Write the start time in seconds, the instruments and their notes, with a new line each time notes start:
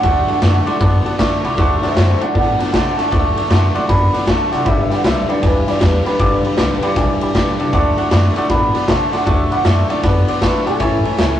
Already playing: clean electric guitar F#5
0.02 upright bass D2, steel-string acoustic guitar D3 A3 D4 F#4 A4, clean electric guitar D3 A3, upright piano D5 F#5 A5, kick, ride
0.28 steel-string acoustic guitar D4 F#4 A4, upright piano D5 F#5 A5, muted upright bass stroke, ride
0.41 upright bass F#2, steel-string acoustic guitar D3 A3 D4 F#4 A4, clean electric guitar D3 A3, upright piano D5 F#5 A5, snare, ride
0.66 clean electric guitar D3 A3, steel-string acoustic guitar D4 F#4 A4, upright piano D5 F#5 C6, ride
0.79 upright bass F#2, clean electric guitar D3 B3, steel-string acoustic guitar A3 D4 F#4 A4, upright piano D5 F#5 B5, kick, ride
1.04 steel-string acoustic guitar D4 F#4 A4, upright piano D5 F#5 A5, muted upright bass stroke, ride
1.18 upright bass F#2, steel-string acoustic guitar D3 A3 D4 F#4 A4, clean electric guitar D3 A3, upright piano D5 F#5 A5, kick, snare, ride
1.43 upright bass C2, clean electric guitar D3 A3, steel-string acoustic guitar D4 F#4 A4, upright piano D5 F#5 B5, ride
1.56 upright bass D2, steel-string acoustic guitar D3 A3 D4 F#4 A4, clean electric guitar D3 A3, upright piano D5 F#5 A5, kick, ride
1.81 steel-string acoustic guitar D4 F#4 A4, clean electric guitar C5 E5, upright piano D5 F#5 A5, muted upright bass stroke, snare, ride
1.95 upright bass F#2, steel-string acoustic guitar D3 A3 D4 F#4 A4, clean electric guitar D3 A3 C5 E5, upright piano D5 F#5 A5, snare, ride
2.20 clean electric guitar D3 A3 D5 F#5, steel-string acoustic guitar D4 F#4 A4, upright piano D5 F#5 A5, muted upright bass stroke, ride
2.34 upright bass A2, clean electric guitar D3 B3 D5 F#5, steel-string acoustic guitar A3 D4 F#4 A4, upright piano D5 F#5 A5, kick, snare, ride
2.59 steel-string acoustic guitar D4 F#4 A4, upright piano D5 F#5 A5, clean electric guitar F#5 A5, muted upright bass stroke, snare, ride
2.73 upright bass C3, steel-string acoustic guitar D3 A3 D4 F#4 A4, clean electric guitar D3 A3 F#5 A5, upright piano D5 F#5 A5, kick, snare, ride
2.97 clean electric guitar D3 A3 A5, steel-string acoustic guitar D4 F#4 A4, upright piano D5 F#5 A5, muted upright bass stroke, snare, ride
3.11 upright bass D2, steel-string acoustic guitar D3 A3 D4 F#4 A4, clean electric guitar D3 A3, upright piano D5 F#5 A5, kick, ride
3.35 steel-string acoustic guitar D4 F#4 A4, upright piano D5 F#5 A5, muted upright bass stroke, ride
3.49 upright bass F#2, steel-string acoustic guitar D3 A3 D4 F#4 A4, clean electric guitar D3 A3, upright piano D5 F#5 C6, snare, ride
3.74 clean electric guitar D3 A3, steel-string acoustic guitar D4 F#4 A4, upright piano D5 F#5 C6, muted upright bass stroke, ride
3.87 upright bass F#2, clean electric guitar D3 B3 B5, steel-string acoustic guitar A3 D4 F#4 A4, upright piano D5 F#5 A5, kick, ride
4.12 steel-string acoustic guitar D4 F#4 A4, upright piano D5 F#5 A5, muted upright bass stroke, snare, ride
4.26 steel-string acoustic guitar D3 A3 D4 F#4 A4, clean electric guitar D3 A3 A5, upright piano D5 F#5 A5, kick, snare, ride
4.51 upright bass C2, clean electric guitar D3 A3 F#5, steel-string acoustic guitar D4 F#4 A4, upright piano D5 F#5 A5, snare, ride
4.64 upright bass G1, clean electric guitar G2 D3 E5, steel-string acoustic guitar G3 D4 G4 B4, upright piano D5 G5 B5, kick, ride
4.90 steel-string acoustic guitar D4 G4 B4, upright piano D5 G5 B5, clean electric guitar F#5, muted upright bass stroke, snare, ride
5.03 upright bass B1, clean electric guitar G2 D3 E5, steel-string acoustic guitar G3 D4 G4 B4, upright piano D5 G5 B5, snare, ride
5.28 clean electric guitar G2 D3 D5, steel-string acoustic guitar D4 G4 B4, upright piano D5 G5 B5, muted upright bass stroke, ride
5.41 upright bass D2, clean electric guitar G2 E3 B4, steel-string acoustic guitar G3 D4 G4 B4, upright piano D5 G5 A5, kick, snare, ride
5.65 steel-string acoustic guitar D4 G4 B4, upright piano D5 G5 B5, clean electric guitar D5, muted upright bass stroke, snare, ride
5.79 upright bass E2, clean electric guitar G2 D3 B4, steel-string acoustic guitar G3 D4 G4 B4, upright piano D5 G5 B5, kick, snare, ride
6.04 clean electric guitar G2 D3 B4, steel-string acoustic guitar D4 G4 B4, upright piano D5 G5 B5, muted upright bass stroke, snare, ride
6.18 upright bass G1, clean electric guitar G2 D3, steel-string acoustic guitar G3 D4 G4 B4, upright piano D5 G5 D6, kick, ride
6.43 steel-string acoustic guitar D4 G4 B4, upright piano D5 G5 B5, muted upright bass stroke, ride
6.56 upright bass B1, clean electric guitar G2 D3, steel-string acoustic guitar G3 D4 G4 B4, upright piano D5 G5 B5, snare, ride
6.81 clean electric guitar G2 D3, steel-string acoustic guitar D4 G4 B4, upright piano D5 G5 B5, muted upright bass stroke, ride
6.95 upright bass B1, clean electric guitar G2 E3, steel-string acoustic guitar G3 D4 G4 B4, upright piano D5 G5 A5, kick, snare, ride
7.20 steel-string acoustic guitar D4 G4 B4, upright piano D5 G5 A5 B5, muted upright bass stroke, ride
7.34 upright bass B1, clean electric guitar G2 D3, steel-string acoustic guitar G3 D4 G4 B4, upright piano D5 G5 B5, kick, snare, ride
7.58 upright bass C2, clean electric guitar G2 D3, steel-string acoustic guitar D4 G4 B4, upright piano D5 G5 A5, ride
7.72 upright bass D2, steel-string acoustic guitar D3 A3 D4 F#4 A4, clean electric guitar D3 A3, upright piano D5 F#5 A5, kick, ride
7.96 steel-string acoustic guitar D4 F#4 A4, upright piano D5 F#5 A5, muted upright bass stroke, ride
8.11 upright bass F#2, clean electric guitar D3 A3, steel-string acoustic guitar D3 A3 D4 F#4 A4, upright piano D5 F#5 B5, snare, ride
8.35 clean electric guitar D3 A3, steel-string acoustic guitar D4 F#4 A4, upright piano D5 F#5 A5, muted upright bass stroke, ride
8.49 upright bass A2, clean electric guitar D3 B3 B5, steel-string acoustic guitar A3 D4 F#4 A4, upright piano D5 F#5 A5, kick, snare, ride
8.74 steel-string acoustic guitar D4 F#4 A4, upright piano D5 F#5 B5, muted upright bass stroke, snare, ride
8.88 upright bass C3, clean electric guitar D3 A3 A5, steel-string acoustic guitar D3 A3 D4 F#4 A4, upright piano D5 F#5 C6, kick, snare, ride
9.12 clean electric guitar D3 A3 F#5, steel-string acoustic guitar D4 F#4 A4, upright piano D5 F#5 C6, muted upright bass stroke, snare, ride
9.25 upright bass D2, steel-string acoustic guitar D3 A3 D4 F#4 A4, clean electric guitar D3 A3 E5, upright piano D5 F#5 A5, kick, ride
9.50 steel-string acoustic guitar D4 F#4 A4, upright piano D5 F#5 B5, clean electric guitar F#5, ride
9.64 upright bass F#2, steel-string acoustic guitar D3 A3 D4 F#4 A4, clean electric guitar D3 A3 E5, upright piano D5 F#5 A5, snare, ride
9.89 clean electric guitar D3 A3 D5, steel-string acoustic guitar D4 F#4 A4, upright piano D5 F#5 A5, muted upright bass stroke, ride
10.02 upright bass F#2, clean electric guitar D3 B3 B4, steel-string acoustic guitar A3 D4 F#4 A4, upright piano D5 F#5 A5, kick, snare, ride
10.27 steel-string acoustic guitar D4 F#4 A4, upright piano D5 F#5 C6, clean electric guitar D5, muted upright bass stroke, ride
10.41 steel-string acoustic guitar D3 A3 D4 F#4 A4, clean electric guitar D3 A3 B4, upright piano D5 F#5 A5, kick, snare, ride
10.66 upright bass B1, clean electric guitar D3 A3 A4, steel-string acoustic guitar D4 F#4 A4, upright piano D5 F#5 A5, ride
10.79 upright bass A1, steel-string acoustic guitar A2 E3 A3 C#4 E4 A4, clean electric guitar A2 E3, upright piano C#5 E5 A5, kick, ride
11.04 steel-string acoustic guitar A3 C#4 E4 A4, upright piano C#5 E5 A5, muted upright bass stroke, ride
11.18 upright bass C#2, steel-string acoustic guitar A2 E3 A3 C#4 E4 A4, clean electric guitar A2 E3, upright piano C#5 E5 A5, snare, ride